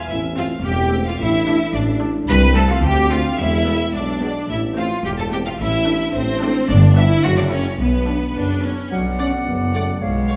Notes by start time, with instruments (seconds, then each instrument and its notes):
Already playing: violin section F5
0.09 double bass section A1, tuba A1, french horn section A3 C4, cello section E4, violin section E5
0.37 viola section A3 C4, cello section F4, violin section F5
0.64 double bass section E1, tuba E1, cello section G4, violin section G5
0.92 viola section A3 C4
1.06 cello section F4, violin section F5
1.19 double bass section A1, tuba A1, french horn section D4, cello section E4, violin section E5
1.47 viola section A3 D4
1.73 double bass section A1, tuba A1, cello section D4, violin section D5
2.01 viola section A3 D4
2.28 double bass section C2, tuba C2, french horn section A3 C4, cello section B4, violin section B5
2.55 viola section A3 C4, cello section A4, violin section A5
2.68 cello section F4, violin section F5
2.83 double bass section D2, tuba D2, cello section G4, violin section G5
3.10 viola section A3 C4, cello section F4, violin section F5
3.37 tuba E1, double bass section E2, french horn section G#3 B3, cello section E4, violin section E5
3.67 viola section G#3 B3
3.93 double bass section B1, tuba B1, cello section D4, violin section D5
4.22 viola section G#3 B3
4.49 double bass section A1, tuba A1, cello section E4, violin section E5
4.76 viola section A3 C4, french horn section A3 C4, cello section F4, violin section F5
5.04 double bass section E1, tuba E1, cello section G4, violin section G5
5.18 cello section A4, violin section A5
5.31 viola section A3 C4, french horn section A3 C4, cello section G4, violin section G5
5.45 cello section F4, violin section F5
5.59 double bass section A1, tuba A1, cello section E4, violin section E5
5.86 viola section A3 D4, french horn section A3 D4
6.13 double bass section A1, tuba A1, cello section C4, violin section C5
6.41 viola section A3 D4, french horn section A3 D4
6.67 double bass section G1, tuba G1, cello section D4, violin section D5
6.95 viola section B3 D4, french horn section B3 D4, cello section E4, violin section E5
7.23 double bass section F#1, tuba F#1, cello section F#4, violin section F#5
7.36 cello section D4, violin section D5
7.50 viola section A#3 E4, french horn section A#3 E4, cello section C#4, violin section C#5
7.78 double bass section B1, tuba B1, cello section B3, violin section B4
8.08 viola section B3 D4, french horn section B3 D4
8.35 tuba F#1, double bass section F#1, viola section D4
8.63 french horn section B3 D4, viola section C#4
8.90 tuba B1, double bass section B1, cello section B2, french horn section F#3, clarinet D5, flute F#5
9.19 french horn section C#4, viola section D5, violin section F#5
9.46 tuba F#1, double bass section F#1, cello section F#2, french horn section B3
9.74 french horn section A3, viola section D5, violin section F#5
10.01 tuba B1, double bass section B1, cello section B2, french horn section G#3, clarinet C#5, flute F5
10.28 violin section C#5 F5, viola section C#5